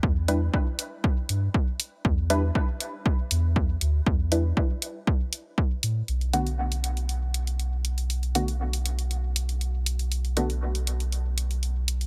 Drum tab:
HH |--x---x---x---x-|--x---x---x---x-|--x---x---x---x-|xxxx-xxxx-xxx-xx|
BD |o---o---o---o---|o---o---o---o---|o---o---o---o---|----------------|

HH |xxxx-xxxx-xxx-xx|xxxx-xxxx-xxx-xx|
BD |----------------|----------------|